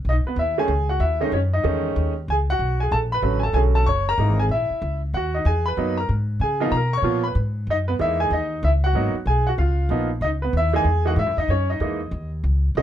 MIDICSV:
0, 0, Header, 1, 4, 480
1, 0, Start_track
1, 0, Tempo, 317628
1, 88, Time_signature, 4, 2, 24, 8
1, 19378, End_track
2, 0, Start_track
2, 0, Title_t, "Upright piano"
2, 0, Program_c, 0, 0
2, 135, Note_on_c, 0, 75, 73
2, 153, Note_on_c, 0, 63, 55
2, 210, Note_off_c, 0, 75, 0
2, 228, Note_off_c, 0, 63, 0
2, 405, Note_on_c, 0, 71, 52
2, 425, Note_on_c, 0, 59, 44
2, 575, Note_off_c, 0, 59, 0
2, 581, Note_off_c, 0, 71, 0
2, 589, Note_on_c, 0, 76, 68
2, 606, Note_on_c, 0, 64, 57
2, 856, Note_off_c, 0, 76, 0
2, 865, Note_off_c, 0, 64, 0
2, 875, Note_on_c, 0, 56, 59
2, 878, Note_on_c, 0, 51, 62
2, 885, Note_on_c, 0, 57, 59
2, 892, Note_on_c, 0, 61, 66
2, 897, Note_on_c, 0, 80, 85
2, 906, Note_on_c, 0, 68, 58
2, 1033, Note_off_c, 0, 56, 0
2, 1034, Note_off_c, 0, 51, 0
2, 1037, Note_off_c, 0, 57, 0
2, 1041, Note_off_c, 0, 61, 0
2, 1327, Note_off_c, 0, 80, 0
2, 1332, Note_off_c, 0, 68, 0
2, 1351, Note_on_c, 0, 78, 66
2, 1368, Note_on_c, 0, 66, 51
2, 1515, Note_on_c, 0, 76, 70
2, 1525, Note_off_c, 0, 66, 0
2, 1534, Note_off_c, 0, 78, 0
2, 1543, Note_on_c, 0, 64, 59
2, 1797, Note_off_c, 0, 76, 0
2, 1811, Note_off_c, 0, 64, 0
2, 1820, Note_on_c, 0, 51, 53
2, 1824, Note_on_c, 0, 56, 49
2, 1834, Note_on_c, 0, 61, 59
2, 1834, Note_on_c, 0, 75, 72
2, 1837, Note_on_c, 0, 57, 50
2, 1841, Note_on_c, 0, 63, 55
2, 1985, Note_off_c, 0, 51, 0
2, 1987, Note_off_c, 0, 56, 0
2, 1992, Note_off_c, 0, 61, 0
2, 1993, Note_off_c, 0, 57, 0
2, 2001, Note_off_c, 0, 63, 0
2, 2013, Note_on_c, 0, 73, 71
2, 2015, Note_off_c, 0, 75, 0
2, 2042, Note_on_c, 0, 61, 60
2, 2089, Note_off_c, 0, 73, 0
2, 2117, Note_off_c, 0, 61, 0
2, 2318, Note_on_c, 0, 75, 72
2, 2331, Note_on_c, 0, 63, 52
2, 2469, Note_on_c, 0, 51, 59
2, 2482, Note_on_c, 0, 56, 51
2, 2482, Note_on_c, 0, 57, 54
2, 2493, Note_on_c, 0, 61, 67
2, 3194, Note_off_c, 0, 51, 0
2, 3201, Note_off_c, 0, 56, 0
2, 3201, Note_off_c, 0, 57, 0
2, 3206, Note_off_c, 0, 61, 0
2, 3209, Note_off_c, 0, 75, 0
2, 3215, Note_off_c, 0, 63, 0
2, 3478, Note_on_c, 0, 80, 82
2, 3507, Note_on_c, 0, 68, 62
2, 3554, Note_off_c, 0, 80, 0
2, 3583, Note_off_c, 0, 68, 0
2, 3779, Note_on_c, 0, 78, 93
2, 3805, Note_on_c, 0, 66, 62
2, 4221, Note_off_c, 0, 66, 0
2, 4236, Note_on_c, 0, 80, 74
2, 4253, Note_off_c, 0, 78, 0
2, 4274, Note_on_c, 0, 68, 59
2, 4412, Note_on_c, 0, 81, 82
2, 4415, Note_off_c, 0, 80, 0
2, 4418, Note_off_c, 0, 68, 0
2, 4437, Note_on_c, 0, 69, 64
2, 4488, Note_off_c, 0, 81, 0
2, 4512, Note_off_c, 0, 69, 0
2, 4718, Note_on_c, 0, 83, 77
2, 4749, Note_on_c, 0, 71, 67
2, 4872, Note_on_c, 0, 50, 44
2, 4876, Note_on_c, 0, 54, 43
2, 4882, Note_on_c, 0, 57, 43
2, 4887, Note_on_c, 0, 61, 51
2, 5103, Note_off_c, 0, 71, 0
2, 5126, Note_off_c, 0, 83, 0
2, 5131, Note_on_c, 0, 80, 63
2, 5145, Note_off_c, 0, 50, 0
2, 5147, Note_off_c, 0, 54, 0
2, 5150, Note_off_c, 0, 57, 0
2, 5153, Note_off_c, 0, 61, 0
2, 5188, Note_on_c, 0, 81, 71
2, 5192, Note_off_c, 0, 80, 0
2, 5222, Note_on_c, 0, 69, 56
2, 5352, Note_on_c, 0, 80, 81
2, 5366, Note_on_c, 0, 50, 45
2, 5371, Note_off_c, 0, 69, 0
2, 5371, Note_off_c, 0, 81, 0
2, 5374, Note_on_c, 0, 54, 41
2, 5378, Note_on_c, 0, 57, 43
2, 5384, Note_on_c, 0, 61, 47
2, 5384, Note_on_c, 0, 68, 62
2, 5427, Note_off_c, 0, 80, 0
2, 5460, Note_off_c, 0, 68, 0
2, 5669, Note_on_c, 0, 81, 82
2, 5689, Note_on_c, 0, 69, 65
2, 5834, Note_off_c, 0, 81, 0
2, 5840, Note_on_c, 0, 85, 96
2, 5844, Note_off_c, 0, 50, 0
2, 5844, Note_off_c, 0, 69, 0
2, 5848, Note_off_c, 0, 54, 0
2, 5850, Note_off_c, 0, 57, 0
2, 5852, Note_off_c, 0, 61, 0
2, 5873, Note_on_c, 0, 73, 73
2, 6118, Note_off_c, 0, 85, 0
2, 6135, Note_off_c, 0, 73, 0
2, 6177, Note_on_c, 0, 82, 94
2, 6202, Note_on_c, 0, 70, 58
2, 6326, Note_on_c, 0, 52, 49
2, 6333, Note_on_c, 0, 58, 44
2, 6334, Note_on_c, 0, 56, 43
2, 6343, Note_on_c, 0, 63, 51
2, 6592, Note_off_c, 0, 52, 0
2, 6596, Note_off_c, 0, 56, 0
2, 6596, Note_off_c, 0, 58, 0
2, 6601, Note_off_c, 0, 63, 0
2, 6619, Note_off_c, 0, 70, 0
2, 6641, Note_on_c, 0, 80, 77
2, 6652, Note_off_c, 0, 82, 0
2, 6675, Note_on_c, 0, 68, 58
2, 6716, Note_off_c, 0, 80, 0
2, 6744, Note_off_c, 0, 68, 0
2, 6820, Note_on_c, 0, 76, 72
2, 6846, Note_on_c, 0, 64, 59
2, 7535, Note_off_c, 0, 76, 0
2, 7549, Note_off_c, 0, 64, 0
2, 7773, Note_on_c, 0, 78, 79
2, 7810, Note_on_c, 0, 66, 62
2, 8065, Note_off_c, 0, 66, 0
2, 8074, Note_off_c, 0, 78, 0
2, 8077, Note_on_c, 0, 75, 60
2, 8102, Note_on_c, 0, 63, 48
2, 8251, Note_off_c, 0, 63, 0
2, 8254, Note_on_c, 0, 80, 83
2, 8255, Note_off_c, 0, 75, 0
2, 8281, Note_on_c, 0, 68, 59
2, 8540, Note_off_c, 0, 68, 0
2, 8547, Note_on_c, 0, 83, 76
2, 8555, Note_off_c, 0, 80, 0
2, 8586, Note_on_c, 0, 71, 61
2, 8726, Note_on_c, 0, 54, 50
2, 8730, Note_on_c, 0, 59, 46
2, 8735, Note_on_c, 0, 58, 45
2, 8739, Note_on_c, 0, 63, 53
2, 8992, Note_off_c, 0, 54, 0
2, 8994, Note_off_c, 0, 59, 0
2, 8996, Note_off_c, 0, 58, 0
2, 8998, Note_off_c, 0, 63, 0
2, 9011, Note_off_c, 0, 71, 0
2, 9029, Note_on_c, 0, 82, 63
2, 9037, Note_off_c, 0, 83, 0
2, 9071, Note_on_c, 0, 70, 52
2, 9193, Note_off_c, 0, 82, 0
2, 9216, Note_off_c, 0, 70, 0
2, 9691, Note_on_c, 0, 80, 77
2, 9722, Note_on_c, 0, 68, 58
2, 9977, Note_on_c, 0, 53, 60
2, 9979, Note_on_c, 0, 58, 54
2, 9980, Note_off_c, 0, 68, 0
2, 9988, Note_on_c, 0, 59, 60
2, 9991, Note_on_c, 0, 63, 72
2, 9993, Note_off_c, 0, 80, 0
2, 10000, Note_on_c, 0, 77, 59
2, 10042, Note_on_c, 0, 65, 48
2, 10142, Note_off_c, 0, 53, 0
2, 10143, Note_off_c, 0, 58, 0
2, 10147, Note_off_c, 0, 59, 0
2, 10149, Note_off_c, 0, 63, 0
2, 10151, Note_on_c, 0, 82, 84
2, 10177, Note_off_c, 0, 77, 0
2, 10182, Note_off_c, 0, 65, 0
2, 10229, Note_on_c, 0, 70, 65
2, 10433, Note_off_c, 0, 82, 0
2, 10475, Note_off_c, 0, 70, 0
2, 10477, Note_on_c, 0, 85, 93
2, 10540, Note_on_c, 0, 73, 65
2, 10628, Note_on_c, 0, 53, 58
2, 10636, Note_on_c, 0, 58, 51
2, 10639, Note_on_c, 0, 59, 52
2, 10644, Note_on_c, 0, 65, 68
2, 10903, Note_off_c, 0, 53, 0
2, 10907, Note_off_c, 0, 58, 0
2, 10909, Note_off_c, 0, 59, 0
2, 10911, Note_off_c, 0, 65, 0
2, 10932, Note_on_c, 0, 83, 67
2, 10949, Note_off_c, 0, 73, 0
2, 10963, Note_off_c, 0, 85, 0
2, 10995, Note_on_c, 0, 71, 50
2, 11105, Note_off_c, 0, 83, 0
2, 11138, Note_off_c, 0, 71, 0
2, 11640, Note_on_c, 0, 63, 66
2, 11650, Note_on_c, 0, 75, 85
2, 11716, Note_off_c, 0, 63, 0
2, 11725, Note_off_c, 0, 75, 0
2, 11907, Note_on_c, 0, 71, 71
2, 11919, Note_on_c, 0, 59, 57
2, 11982, Note_off_c, 0, 71, 0
2, 11995, Note_off_c, 0, 59, 0
2, 12079, Note_on_c, 0, 52, 46
2, 12081, Note_on_c, 0, 56, 42
2, 12084, Note_on_c, 0, 58, 46
2, 12087, Note_on_c, 0, 63, 52
2, 12108, Note_on_c, 0, 76, 85
2, 12120, Note_on_c, 0, 64, 68
2, 12374, Note_off_c, 0, 76, 0
2, 12380, Note_off_c, 0, 64, 0
2, 12394, Note_on_c, 0, 80, 85
2, 12408, Note_on_c, 0, 68, 63
2, 12561, Note_off_c, 0, 52, 0
2, 12562, Note_off_c, 0, 56, 0
2, 12563, Note_off_c, 0, 58, 0
2, 12564, Note_off_c, 0, 68, 0
2, 12565, Note_off_c, 0, 63, 0
2, 12574, Note_off_c, 0, 80, 0
2, 12584, Note_on_c, 0, 75, 77
2, 12597, Note_on_c, 0, 63, 58
2, 13028, Note_off_c, 0, 63, 0
2, 13062, Note_on_c, 0, 76, 81
2, 13068, Note_off_c, 0, 75, 0
2, 13088, Note_on_c, 0, 64, 67
2, 13138, Note_off_c, 0, 76, 0
2, 13164, Note_off_c, 0, 64, 0
2, 13357, Note_on_c, 0, 78, 83
2, 13393, Note_on_c, 0, 66, 67
2, 13522, Note_on_c, 0, 58, 49
2, 13527, Note_on_c, 0, 54, 56
2, 13527, Note_on_c, 0, 59, 47
2, 13535, Note_on_c, 0, 63, 59
2, 13791, Note_off_c, 0, 58, 0
2, 13793, Note_off_c, 0, 59, 0
2, 13794, Note_off_c, 0, 54, 0
2, 13796, Note_off_c, 0, 78, 0
2, 13798, Note_off_c, 0, 63, 0
2, 13816, Note_off_c, 0, 66, 0
2, 14010, Note_on_c, 0, 80, 77
2, 14047, Note_on_c, 0, 68, 63
2, 14285, Note_off_c, 0, 80, 0
2, 14304, Note_off_c, 0, 68, 0
2, 14307, Note_on_c, 0, 78, 71
2, 14338, Note_on_c, 0, 66, 54
2, 14382, Note_off_c, 0, 78, 0
2, 14412, Note_off_c, 0, 66, 0
2, 14485, Note_on_c, 0, 77, 64
2, 14510, Note_on_c, 0, 65, 55
2, 14962, Note_on_c, 0, 58, 49
2, 14963, Note_on_c, 0, 53, 53
2, 14974, Note_on_c, 0, 59, 50
2, 14977, Note_on_c, 0, 63, 60
2, 15209, Note_off_c, 0, 77, 0
2, 15222, Note_off_c, 0, 65, 0
2, 15232, Note_off_c, 0, 53, 0
2, 15232, Note_off_c, 0, 58, 0
2, 15238, Note_off_c, 0, 59, 0
2, 15240, Note_off_c, 0, 63, 0
2, 15445, Note_on_c, 0, 75, 78
2, 15480, Note_on_c, 0, 63, 64
2, 15521, Note_off_c, 0, 75, 0
2, 15556, Note_off_c, 0, 63, 0
2, 15749, Note_on_c, 0, 71, 62
2, 15782, Note_on_c, 0, 59, 48
2, 15915, Note_off_c, 0, 71, 0
2, 15933, Note_off_c, 0, 59, 0
2, 15975, Note_on_c, 0, 76, 85
2, 15994, Note_on_c, 0, 64, 65
2, 16220, Note_on_c, 0, 52, 69
2, 16221, Note_on_c, 0, 56, 61
2, 16228, Note_on_c, 0, 58, 59
2, 16229, Note_off_c, 0, 76, 0
2, 16230, Note_on_c, 0, 63, 70
2, 16240, Note_off_c, 0, 64, 0
2, 16260, Note_on_c, 0, 80, 97
2, 16282, Note_on_c, 0, 68, 68
2, 16385, Note_off_c, 0, 52, 0
2, 16386, Note_off_c, 0, 56, 0
2, 16389, Note_off_c, 0, 58, 0
2, 16390, Note_off_c, 0, 63, 0
2, 16700, Note_on_c, 0, 52, 55
2, 16702, Note_off_c, 0, 68, 0
2, 16703, Note_on_c, 0, 58, 50
2, 16704, Note_on_c, 0, 63, 61
2, 16707, Note_on_c, 0, 56, 51
2, 16730, Note_on_c, 0, 78, 77
2, 16736, Note_off_c, 0, 80, 0
2, 16742, Note_on_c, 0, 66, 59
2, 16805, Note_off_c, 0, 78, 0
2, 16816, Note_off_c, 0, 66, 0
2, 16866, Note_off_c, 0, 52, 0
2, 16867, Note_off_c, 0, 58, 0
2, 16868, Note_off_c, 0, 63, 0
2, 16869, Note_off_c, 0, 56, 0
2, 16910, Note_on_c, 0, 76, 84
2, 16933, Note_on_c, 0, 64, 67
2, 17176, Note_off_c, 0, 76, 0
2, 17189, Note_off_c, 0, 64, 0
2, 17198, Note_on_c, 0, 75, 79
2, 17224, Note_on_c, 0, 63, 60
2, 17375, Note_off_c, 0, 63, 0
2, 17378, Note_off_c, 0, 75, 0
2, 17378, Note_on_c, 0, 73, 78
2, 17396, Note_on_c, 0, 61, 62
2, 17660, Note_off_c, 0, 61, 0
2, 17678, Note_on_c, 0, 75, 63
2, 17680, Note_off_c, 0, 73, 0
2, 17701, Note_on_c, 0, 63, 51
2, 17833, Note_off_c, 0, 63, 0
2, 17839, Note_on_c, 0, 52, 51
2, 17847, Note_on_c, 0, 56, 46
2, 17855, Note_on_c, 0, 58, 49
2, 17855, Note_on_c, 0, 63, 54
2, 18112, Note_off_c, 0, 52, 0
2, 18116, Note_off_c, 0, 56, 0
2, 18120, Note_off_c, 0, 58, 0
2, 18120, Note_off_c, 0, 63, 0
2, 18572, Note_off_c, 0, 75, 0
2, 19298, Note_on_c, 0, 51, 61
2, 19299, Note_on_c, 0, 75, 87
2, 19305, Note_on_c, 0, 56, 56
2, 19306, Note_on_c, 0, 57, 55
2, 19313, Note_on_c, 0, 61, 63
2, 19378, Note_off_c, 0, 51, 0
2, 19378, Note_off_c, 0, 56, 0
2, 19378, Note_off_c, 0, 57, 0
2, 19378, Note_off_c, 0, 61, 0
2, 19378, Note_off_c, 0, 75, 0
2, 19378, End_track
3, 0, Start_track
3, 0, Title_t, "Upright bass"
3, 0, Program_c, 1, 32
3, 71, Note_on_c, 1, 35, 68
3, 356, Note_off_c, 1, 35, 0
3, 546, Note_on_c, 1, 39, 72
3, 1013, Note_off_c, 1, 39, 0
3, 1022, Note_on_c, 1, 37, 76
3, 1498, Note_off_c, 1, 37, 0
3, 1507, Note_on_c, 1, 39, 79
3, 1980, Note_off_c, 1, 39, 0
3, 1992, Note_on_c, 1, 42, 73
3, 2463, Note_off_c, 1, 42, 0
3, 2477, Note_on_c, 1, 40, 77
3, 2945, Note_off_c, 1, 40, 0
3, 2962, Note_on_c, 1, 39, 77
3, 3428, Note_off_c, 1, 39, 0
3, 3449, Note_on_c, 1, 37, 73
3, 3907, Note_off_c, 1, 37, 0
3, 3916, Note_on_c, 1, 35, 69
3, 4384, Note_off_c, 1, 35, 0
3, 4404, Note_on_c, 1, 34, 80
3, 4861, Note_off_c, 1, 34, 0
3, 4870, Note_on_c, 1, 33, 74
3, 5328, Note_off_c, 1, 33, 0
3, 5338, Note_on_c, 1, 35, 77
3, 5814, Note_off_c, 1, 35, 0
3, 5832, Note_on_c, 1, 30, 68
3, 6302, Note_off_c, 1, 30, 0
3, 6313, Note_on_c, 1, 32, 80
3, 6777, Note_off_c, 1, 32, 0
3, 6786, Note_on_c, 1, 34, 66
3, 7070, Note_off_c, 1, 34, 0
3, 7279, Note_on_c, 1, 37, 78
3, 7745, Note_off_c, 1, 37, 0
3, 7761, Note_on_c, 1, 39, 69
3, 8227, Note_off_c, 1, 39, 0
3, 8235, Note_on_c, 1, 40, 81
3, 8703, Note_off_c, 1, 40, 0
3, 8720, Note_on_c, 1, 42, 69
3, 9186, Note_off_c, 1, 42, 0
3, 9200, Note_on_c, 1, 44, 78
3, 9657, Note_off_c, 1, 44, 0
3, 9666, Note_on_c, 1, 49, 72
3, 10134, Note_off_c, 1, 49, 0
3, 10143, Note_on_c, 1, 47, 74
3, 10600, Note_off_c, 1, 47, 0
3, 10610, Note_on_c, 1, 46, 71
3, 11091, Note_off_c, 1, 46, 0
3, 11107, Note_on_c, 1, 44, 81
3, 11580, Note_off_c, 1, 44, 0
3, 11588, Note_on_c, 1, 42, 77
3, 12060, Note_off_c, 1, 42, 0
3, 12077, Note_on_c, 1, 40, 81
3, 12539, Note_off_c, 1, 40, 0
3, 12548, Note_on_c, 1, 39, 75
3, 13021, Note_off_c, 1, 39, 0
3, 13037, Note_on_c, 1, 37, 80
3, 13492, Note_off_c, 1, 37, 0
3, 13501, Note_on_c, 1, 32, 66
3, 13789, Note_off_c, 1, 32, 0
3, 13987, Note_on_c, 1, 35, 76
3, 14461, Note_off_c, 1, 35, 0
3, 14476, Note_on_c, 1, 37, 74
3, 14936, Note_off_c, 1, 37, 0
3, 14945, Note_on_c, 1, 34, 74
3, 15420, Note_off_c, 1, 34, 0
3, 15428, Note_on_c, 1, 37, 73
3, 15902, Note_off_c, 1, 37, 0
3, 15913, Note_on_c, 1, 39, 78
3, 16378, Note_off_c, 1, 39, 0
3, 16387, Note_on_c, 1, 40, 72
3, 16857, Note_off_c, 1, 40, 0
3, 16866, Note_on_c, 1, 44, 78
3, 17020, Note_off_c, 1, 44, 0
3, 17020, Note_on_c, 1, 42, 53
3, 17172, Note_off_c, 1, 42, 0
3, 17181, Note_on_c, 1, 40, 60
3, 17342, Note_off_c, 1, 40, 0
3, 17349, Note_on_c, 1, 42, 69
3, 17824, Note_off_c, 1, 42, 0
3, 17832, Note_on_c, 1, 40, 75
3, 18296, Note_off_c, 1, 40, 0
3, 18305, Note_on_c, 1, 39, 75
3, 18782, Note_off_c, 1, 39, 0
3, 18794, Note_on_c, 1, 37, 79
3, 19259, Note_off_c, 1, 37, 0
3, 19268, Note_on_c, 1, 35, 69
3, 19378, Note_off_c, 1, 35, 0
3, 19378, End_track
4, 0, Start_track
4, 0, Title_t, "Muted upright bass strokes"
4, 373, Note_on_c, 9, 29, 36
4, 524, Note_off_c, 9, 29, 0
4, 7102, Note_on_c, 9, 29, 33
4, 7253, Note_off_c, 9, 29, 0
4, 13806, Note_on_c, 9, 29, 35
4, 13957, Note_off_c, 9, 29, 0
4, 19378, End_track
0, 0, End_of_file